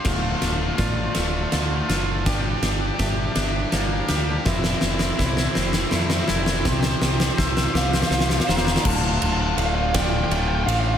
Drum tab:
CC |x-----------------------|------------------------|------------------------|------------------------|
RD |----x---x---x---x---x---|x---x---x---x---x---x---|------------------------|------------------------|
SD |o---o---o---o---o---o---|o---o---o---o---o---o---|o-o-o-o-o-o-o-o-o-o-o-o-|o-o-o-o-o-o-o-oooooooooo|
BD |o-------o---------------|o-------o---------------|o-------o---------------|o-------o---------------|

CC |x-----------------------|
RD |----x---x---x---x---x---|
SD |------------o-----------|
BD |o-----------o-----------|